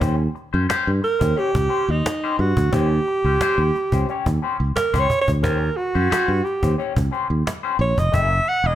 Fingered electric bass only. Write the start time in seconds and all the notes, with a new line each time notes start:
0.01 D#2
0.54 F#2
0.70 muted fingered electric bass stroke
0.87 G2
1.21 D#2
1.55 C#2
1.89 D#2
2.39 G2
2.57 D2
2.73 D#2
3.24 C#2
3.40 muted fingered electric bass stroke
3.58 D#2
3.92 C#2
4.26 D#2
4.60 C#2
4.76 muted fingered electric bass stroke
4.94 C#2
5.28 D2
5.44 D#2
5.95 F#2
6.11 muted fingered electric bass stroke
6.28 G2
6.63 D#2
6.97 C#2
7.30 D#2
7.79 A#1
7.98 F1
8.14 F#1
8.64 E1